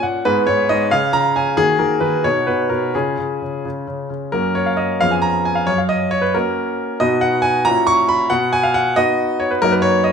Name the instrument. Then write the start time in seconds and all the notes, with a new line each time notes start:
grand piano
Already playing: A#3 C#4
0.03 A#2 F#5
0.25 G#2 B3 G#4 B4
0.47 G#2 C#5
0.69 G#2 D#5
0.91 C#3 C#4 G#4 F5
1.13 C#3 A#5
1.36 C#3 G#5
1.57 D#3 A#3 F#4 G#4
1.79 D#3 A#4
2.00 D#3 B4
2.24 B2 D#4 F#4 C#5
2.47 B2 B4
2.69 B2 A#4
2.95 C#3 C#4 F4 G#4
3.18 C#3
3.42 C#3
3.65 C#3
3.88 C#3
4.10 C#3
4.32 F#2 A#3 C#4 F#4 A#4
4.55 C#5
4.66 F5
4.77 D#5
5.01 F2 B3 C#4 G#4 F5
5.11 G#5
5.22 A#5
5.45 G#5
5.55 F5
5.67 F#2 C#5
5.78 F5
5.89 D#5
6.11 C#5
6.22 B4
6.34 A#3 C#4 F#4 A#4
7.00 B2 B3 D#4 F#4 D#5
7.21 F#5
7.42 G#5
7.65 A#2 C#4 E4 F#4 A#5
7.87 C#6
8.09 B5
8.30 B2 F#5
8.53 G#5
8.63 F5
8.74 F#5
8.96 B3 D#4 F#4 D#5
9.40 C#5
9.51 B4
9.62 F#2 A#3 D#4 F#4 A#4
9.72 B4
9.82 C#5
10.04 D#5